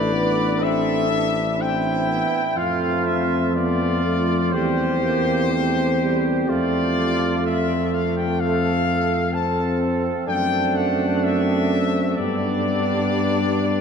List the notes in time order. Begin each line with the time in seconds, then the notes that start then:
Already playing: A1 A3 D4 B4 D5
0.13 B3
0.59 C4 A4 E5
1.10 D4
1.58 C4 E4 G5
2.10 B3
2.56 F2 A3 C4 F4 F5
3.06 E5
3.54 B3 F4 D5
4.04 A3
4.52 E2 G3 C4 G4 C5
5.03 A#3
5.52 A3 G4
6.02 G3
6.48 F2 A3 F4 D5
7.44 A3 E5
7.92 F5
8.17 G5
8.39 A4 F5
9.32 C4 A4 A5
10.27 F#2 A3 C4 D4 G5
10.75 F#5
11.23 E5
12.17 G2 G3 B3 D4 D5